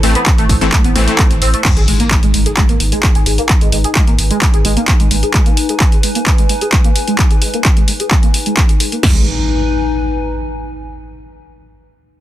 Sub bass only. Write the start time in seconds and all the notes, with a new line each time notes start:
0.03 A1
0.38 A1
0.49 A1
0.84 A1
0.96 A1
1.31 A1
1.42 A1
1.77 G#1
1.88 G#1
2.23 G#1
2.34 G#1
2.69 G#1
2.80 G#1
3.15 G#1
3.26 G#1
3.61 G#1
3.72 G#1
4.08 G#1
4.19 G#1
4.54 G#1
4.65 G#1
5.00 G#1
5.11 G#1